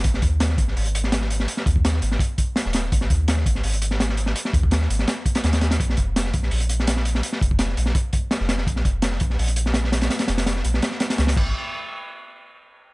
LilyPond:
<<
  \new Staff \with { instrumentName = "Sub bass" } { \clef bass \time 4/4 \key ais \phrygian \tempo 4 = 167 gis,,8 dis,4 gis,,8 gis,,2 | r8 dis,4 gis,,8 r4 r16 dis,,8. | gis,,8 dis,4 gis,,8 gis,,2 | r8 dis,4 gis,,8 r4 dis,4 |
ais,,8 eis,,4 ais,,8 ais,,2 | r8 eis,,4 ais,,8 r4 r16 eis,,8. | ais,,8 eis,,4 ais,,8 ais,,2 | r8 eis,,4 ais,,8 r4 cis,8 gis,,8 |
r1 | }
  \new DrumStaff \with { instrumentName = "Drums" } \drummode { \time 4/4 <hh bd>16 sn16 <hh bd>8 <hh sn>16 sn16 <hh bd>16 sn16 hho16 hh16 hh16 sn16 <hh sn>16 sn16 hh16 sn16 | hh16 sn16 <hh bd>16 bd16 <hh sn>16 sn16 hh16 sn16 <hh bd>8 <hh bd>8 <hh sn>16 sn16 <hh sn>8 | <hh bd>16 sn16 <hh bd>8 <hh sn>16 sn16 <hh bd>16 sn16 hho16 hh16 hh16 sn16 <hh sn>16 sn16 hh16 sn16 | hh16 sn16 <hh bd>16 bd16 <hh sn>16 sn16 hh16 sn16 <hh sn>8 <hh bd>16 <hh sn>16 <hh sn>16 <hh sn>16 <hh sn>16 <hh sn>16 |
<hh bd>16 sn16 <hh bd>8 <hh sn>16 sn16 <hh bd>16 sn16 hho16 hh16 hh16 sn16 <hh sn>16 sn16 hh16 sn16 | hh16 sn16 <hh bd>16 bd16 <hh sn>16 sn16 hh16 sn16 <hh bd>8 <hh bd>8 <hh sn>16 sn16 <hh sn>16 sn16 | <hh bd>16 sn16 <hh bd>8 <hh sn>16 sn16 <hh bd>16 sn16 hho16 hh16 hh16 sn16 <hh sn>16 sn16 <hh sn>16 <hh sn>16 | <hh sn>16 <hh sn>16 <hh sn>16 <hh sn>16 <hh sn>16 sn16 hh16 sn16 <hh sn>16 sn16 <hh sn>16 <hh sn>16 <hh sn>16 <hh sn>16 <cymc bd>8 |
r4 r4 r4 r4 | }
>>